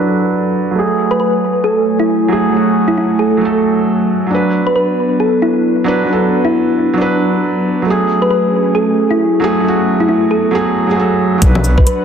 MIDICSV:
0, 0, Header, 1, 6, 480
1, 0, Start_track
1, 0, Tempo, 444444
1, 812, Time_signature, 4, 2, 24, 8
1, 13013, End_track
2, 0, Start_track
2, 0, Title_t, "Synth pluck"
2, 0, Program_c, 0, 84
2, 1198, Note_on_c, 0, 71, 82
2, 1258, Note_off_c, 0, 71, 0
2, 1293, Note_on_c, 0, 71, 71
2, 1386, Note_off_c, 0, 71, 0
2, 1771, Note_on_c, 0, 69, 84
2, 1992, Note_off_c, 0, 69, 0
2, 2155, Note_on_c, 0, 64, 87
2, 2406, Note_off_c, 0, 64, 0
2, 3108, Note_on_c, 0, 64, 83
2, 3173, Note_off_c, 0, 64, 0
2, 3214, Note_on_c, 0, 64, 71
2, 3306, Note_off_c, 0, 64, 0
2, 3447, Note_on_c, 0, 69, 83
2, 4132, Note_off_c, 0, 69, 0
2, 5039, Note_on_c, 0, 71, 81
2, 5099, Note_off_c, 0, 71, 0
2, 5137, Note_on_c, 0, 71, 72
2, 5228, Note_off_c, 0, 71, 0
2, 5615, Note_on_c, 0, 69, 84
2, 5835, Note_off_c, 0, 69, 0
2, 5856, Note_on_c, 0, 64, 88
2, 6109, Note_off_c, 0, 64, 0
2, 6962, Note_on_c, 0, 64, 85
2, 7294, Note_off_c, 0, 64, 0
2, 8877, Note_on_c, 0, 71, 85
2, 8938, Note_off_c, 0, 71, 0
2, 8969, Note_on_c, 0, 71, 74
2, 9064, Note_off_c, 0, 71, 0
2, 9448, Note_on_c, 0, 69, 86
2, 9671, Note_off_c, 0, 69, 0
2, 9834, Note_on_c, 0, 64, 87
2, 10085, Note_off_c, 0, 64, 0
2, 10804, Note_on_c, 0, 64, 86
2, 10861, Note_off_c, 0, 64, 0
2, 10894, Note_on_c, 0, 64, 74
2, 10986, Note_off_c, 0, 64, 0
2, 11133, Note_on_c, 0, 69, 86
2, 11372, Note_off_c, 0, 69, 0
2, 12718, Note_on_c, 0, 71, 87
2, 12778, Note_off_c, 0, 71, 0
2, 12815, Note_on_c, 0, 71, 77
2, 12907, Note_off_c, 0, 71, 0
2, 13013, End_track
3, 0, Start_track
3, 0, Title_t, "Ambient pad"
3, 0, Program_c, 1, 92
3, 0, Note_on_c, 1, 54, 71
3, 0, Note_on_c, 1, 62, 63
3, 0, Note_on_c, 1, 69, 64
3, 0, Note_on_c, 1, 74, 77
3, 773, Note_off_c, 1, 62, 0
3, 773, Note_off_c, 1, 74, 0
3, 793, Note_off_c, 1, 69, 0
3, 810, Note_on_c, 1, 57, 67
3, 811, Note_on_c, 1, 80, 65
3, 814, Note_on_c, 1, 73, 78
3, 4612, Note_off_c, 1, 57, 0
3, 4613, Note_off_c, 1, 80, 0
3, 4615, Note_off_c, 1, 73, 0
3, 4646, Note_on_c, 1, 59, 65
3, 4646, Note_on_c, 1, 71, 79
3, 4649, Note_on_c, 1, 62, 65
3, 8448, Note_off_c, 1, 54, 0
3, 8450, Note_off_c, 1, 71, 0
3, 8451, Note_off_c, 1, 59, 0
3, 8452, Note_off_c, 1, 62, 0
3, 8487, Note_on_c, 1, 61, 66
3, 8491, Note_on_c, 1, 54, 74
3, 8492, Note_on_c, 1, 68, 81
3, 8493, Note_on_c, 1, 57, 66
3, 10390, Note_off_c, 1, 61, 0
3, 10410, Note_on_c, 1, 59, 65
3, 11342, Note_off_c, 1, 54, 0
3, 11343, Note_off_c, 1, 68, 0
3, 11344, Note_off_c, 1, 57, 0
3, 11361, Note_off_c, 1, 59, 0
3, 12336, Note_on_c, 1, 62, 71
3, 12336, Note_on_c, 1, 71, 79
3, 12339, Note_on_c, 1, 78, 70
3, 13013, Note_off_c, 1, 62, 0
3, 13013, Note_off_c, 1, 71, 0
3, 13013, Note_off_c, 1, 78, 0
3, 13013, End_track
4, 0, Start_track
4, 0, Title_t, "Felt piano"
4, 0, Program_c, 2, 0
4, 0, Control_c, 2, 64, 127
4, 0, Note_on_c, 2, 54, 84
4, 0, Note_on_c, 2, 62, 78
4, 0, Note_on_c, 2, 69, 79
4, 0, Note_on_c, 2, 71, 95
4, 749, Note_off_c, 2, 54, 0
4, 765, Note_on_c, 2, 54, 70
4, 788, Note_off_c, 2, 62, 0
4, 808, Note_on_c, 2, 57, 67
4, 809, Note_off_c, 2, 71, 0
4, 825, Control_c, 2, 64, 0
4, 831, Note_off_c, 2, 69, 0
4, 850, Note_on_c, 2, 68, 78
4, 1029, Control_c, 2, 64, 127
4, 2446, Note_off_c, 2, 54, 0
4, 2466, Note_on_c, 2, 54, 88
4, 2467, Note_off_c, 2, 57, 0
4, 2487, Note_on_c, 2, 57, 81
4, 2488, Note_off_c, 2, 68, 0
4, 2509, Note_on_c, 2, 68, 98
4, 2668, Note_off_c, 2, 54, 0
4, 2685, Note_on_c, 2, 54, 74
4, 2707, Note_off_c, 2, 57, 0
4, 2718, Note_off_c, 2, 68, 0
4, 2727, Note_on_c, 2, 57, 67
4, 2770, Note_on_c, 2, 66, 85
4, 3624, Note_off_c, 2, 54, 0
4, 3641, Note_on_c, 2, 54, 86
4, 3667, Note_off_c, 2, 57, 0
4, 3683, Note_on_c, 2, 57, 76
4, 3688, Note_off_c, 2, 66, 0
4, 3727, Note_on_c, 2, 69, 92
4, 4590, Note_off_c, 2, 54, 0
4, 4606, Note_on_c, 2, 54, 71
4, 4625, Note_off_c, 2, 57, 0
4, 4647, Note_off_c, 2, 69, 0
4, 4650, Note_on_c, 2, 62, 69
4, 4667, Control_c, 2, 64, 0
4, 4692, Note_on_c, 2, 71, 79
4, 4835, Control_c, 2, 64, 127
4, 6286, Note_off_c, 2, 54, 0
4, 6308, Note_off_c, 2, 62, 0
4, 6310, Note_on_c, 2, 54, 91
4, 6329, Note_off_c, 2, 71, 0
4, 6330, Note_on_c, 2, 62, 82
4, 6352, Note_on_c, 2, 71, 96
4, 6513, Note_off_c, 2, 54, 0
4, 6529, Note_on_c, 2, 54, 77
4, 6548, Note_off_c, 2, 62, 0
4, 6559, Note_off_c, 2, 71, 0
4, 6572, Note_on_c, 2, 62, 71
4, 6616, Note_on_c, 2, 69, 85
4, 7473, Note_off_c, 2, 54, 0
4, 7489, Note_on_c, 2, 54, 86
4, 7509, Note_off_c, 2, 62, 0
4, 7531, Note_off_c, 2, 69, 0
4, 7531, Note_on_c, 2, 62, 79
4, 7575, Note_on_c, 2, 71, 96
4, 8431, Note_off_c, 2, 54, 0
4, 8447, Note_on_c, 2, 54, 76
4, 8469, Note_off_c, 2, 62, 0
4, 8491, Note_off_c, 2, 71, 0
4, 8491, Note_on_c, 2, 57, 69
4, 8505, Control_c, 2, 64, 0
4, 8534, Note_on_c, 2, 68, 83
4, 8696, Control_c, 2, 64, 127
4, 10127, Note_off_c, 2, 54, 0
4, 10149, Note_off_c, 2, 57, 0
4, 10149, Note_on_c, 2, 54, 91
4, 10170, Note_off_c, 2, 68, 0
4, 10172, Note_on_c, 2, 57, 87
4, 10193, Note_on_c, 2, 68, 99
4, 10354, Note_off_c, 2, 54, 0
4, 10371, Note_on_c, 2, 54, 77
4, 10389, Note_off_c, 2, 57, 0
4, 10400, Note_off_c, 2, 68, 0
4, 10413, Note_on_c, 2, 57, 70
4, 10456, Note_on_c, 2, 66, 87
4, 11329, Note_off_c, 2, 54, 0
4, 11350, Note_off_c, 2, 57, 0
4, 11350, Note_on_c, 2, 54, 91
4, 11371, Note_on_c, 2, 57, 82
4, 11372, Note_off_c, 2, 66, 0
4, 11393, Note_on_c, 2, 68, 100
4, 11718, Note_off_c, 2, 54, 0
4, 11728, Note_off_c, 2, 57, 0
4, 11737, Note_on_c, 2, 54, 81
4, 11739, Note_off_c, 2, 68, 0
4, 11761, Note_on_c, 2, 57, 73
4, 11782, Note_on_c, 2, 68, 90
4, 11814, Note_off_c, 2, 54, 0
4, 11831, Note_off_c, 2, 57, 0
4, 11831, Note_on_c, 2, 54, 82
4, 11841, Note_off_c, 2, 68, 0
4, 11851, Note_on_c, 2, 57, 75
4, 11874, Note_on_c, 2, 69, 90
4, 12273, Note_off_c, 2, 54, 0
4, 12290, Note_on_c, 2, 54, 83
4, 12309, Note_off_c, 2, 57, 0
4, 12320, Note_off_c, 2, 69, 0
4, 12333, Note_on_c, 2, 62, 72
4, 12343, Control_c, 2, 64, 0
4, 12376, Note_on_c, 2, 71, 88
4, 12553, Control_c, 2, 64, 127
4, 13013, Note_off_c, 2, 54, 0
4, 13013, Note_off_c, 2, 62, 0
4, 13013, Note_off_c, 2, 71, 0
4, 13013, End_track
5, 0, Start_track
5, 0, Title_t, "Detuned saw bass"
5, 0, Program_c, 3, 39
5, 12332, Note_on_c, 3, 35, 100
5, 12800, Note_off_c, 3, 35, 0
5, 13013, End_track
6, 0, Start_track
6, 0, Title_t, "Drums"
6, 12331, Note_on_c, 9, 42, 58
6, 12332, Note_on_c, 9, 36, 116
6, 12439, Note_off_c, 9, 42, 0
6, 12440, Note_off_c, 9, 36, 0
6, 12477, Note_on_c, 9, 61, 68
6, 12574, Note_on_c, 9, 69, 71
6, 12585, Note_off_c, 9, 61, 0
6, 12682, Note_off_c, 9, 69, 0
6, 12719, Note_on_c, 9, 36, 101
6, 12815, Note_on_c, 9, 42, 55
6, 12827, Note_off_c, 9, 36, 0
6, 12923, Note_off_c, 9, 42, 0
6, 13013, End_track
0, 0, End_of_file